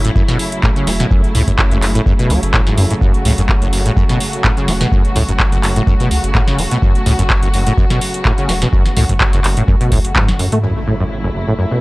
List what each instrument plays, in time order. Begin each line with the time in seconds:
Already playing: string section C#3 F#3 A3 E4
0.05 acid bass A2, closed hi-hat
0.16 acid bass F#2, kick
0.28 acid bass B2, snare, closed hi-hat
0.39 open hi-hat
0.52 closed hi-hat
0.63 acid bass A2, kick, clap
0.76 acid bass C#3, closed hi-hat
0.87 sub bass E1, acid bass F#3, snare, open hi-hat
1.00 acid bass B2, snare, closed hi-hat
1.11 sub bass F#1, acid bass F#2, kick
1.24 closed hi-hat
1.35 sub bass C#2, acid bass A2, open hi-hat
1.48 sub bass F#1, acid bass F#2, kick, closed hi-hat
1.59 kick, clap
1.71 acid bass F#1, closed hi-hat
1.82 acid bass F#1, clap, open hi-hat
1.95 acid bass A2, closed hi-hat
2.06 acid bass F#2, kick
2.19 acid bass B2, closed hi-hat
2.30 sub bass C#2, acid bass F#3, open hi-hat
2.43 sub bass F#1, closed hi-hat
2.54 acid bass A2, kick, clap
2.67 acid bass G#2, snare, closed hi-hat
2.78 sub bass F#2, acid bass F#2, open hi-hat
2.90 acid bass G#2, closed hi-hat
3.01 sub bass F#1, acid bass F#2, string section F#4, kick
3.14 closed hi-hat
3.25 sub bass C#2, acid bass A2, open hi-hat
3.38 sub bass F#1, acid bass F#2, closed hi-hat
3.49 kick, clap
3.62 acid bass F#1, closed hi-hat
3.73 acid bass F#1, open hi-hat
3.86 acid bass A2, closed hi-hat
3.97 acid bass F#2, kick
4.09 acid bass B2, snare, closed hi-hat
4.20 open hi-hat
4.33 closed hi-hat
4.44 acid bass A2, kick, clap
4.57 acid bass C#3, closed hi-hat
4.68 sub bass E1, acid bass F#3, snare, open hi-hat
4.81 acid bass B2, snare, closed hi-hat
4.92 sub bass F#1, acid bass F#2, kick
5.05 closed hi-hat
5.16 sub bass C#2, acid bass A2, open hi-hat
5.29 sub bass F#1, acid bass F#2, closed hi-hat
5.39 kick, clap
5.52 acid bass F#1, closed hi-hat
5.63 acid bass F#1, clap, open hi-hat
5.76 acid bass A2, closed hi-hat
5.87 acid bass F#2, kick
6.00 acid bass B2, closed hi-hat
6.11 sub bass C#2, open hi-hat
6.24 sub bass F#1, closed hi-hat
6.35 acid bass A2, kick, clap
6.48 acid bass C#3, snare, closed hi-hat
6.59 sub bass E1, acid bass F#3, open hi-hat
6.71 acid bass B2, closed hi-hat
6.82 sub bass F#1, acid bass F#2, kick
6.95 closed hi-hat
7.06 sub bass C#2, acid bass A2, open hi-hat
7.19 sub bass F#1, acid bass F#2, closed hi-hat
7.30 kick, clap
7.43 acid bass F#1, closed hi-hat
7.54 acid bass F#1, open hi-hat
7.67 acid bass A2, closed hi-hat
7.78 acid bass F#2, kick
7.90 acid bass B2, snare, closed hi-hat
8.01 open hi-hat
8.14 closed hi-hat
8.25 acid bass A2, kick, clap
8.38 acid bass C#3, closed hi-hat
8.49 sub bass E1, acid bass F#3, snare, open hi-hat
8.62 acid bass B2, snare, closed hi-hat
8.73 sub bass F#1, acid bass F#2, kick
8.86 snare, closed hi-hat
8.97 sub bass C#2, acid bass A2, snare, open hi-hat
9.09 sub bass F#1, acid bass F#2, kick, closed hi-hat
9.20 kick, clap
9.33 acid bass F#1, snare, closed hi-hat
9.44 acid bass F#1, clap, open hi-hat
9.57 acid bass A2, closed hi-hat
9.68 acid bass F#2, kick
9.81 acid bass B2, closed hi-hat
9.92 sub bass C#2, acid bass A2, kick, open hi-hat
10.05 sub bass F#1, closed hi-hat
10.16 acid bass G#2, kick, clap, high tom
10.28 acid bass F#2, snare, closed hi-hat, high tom
10.39 acid bass F#2, sub bass F#2, open hi-hat
10.52 acid bass A3, closed hi-hat, mid tom
10.63 acid bass F#2, string section C#3 F#3 A3 E4, impact
10.87 acid bass A2
11.00 acid bass F#2
11.24 acid bass F#1
11.35 acid bass F#1
11.48 acid bass A2
11.59 acid bass F#2
11.71 acid bass B2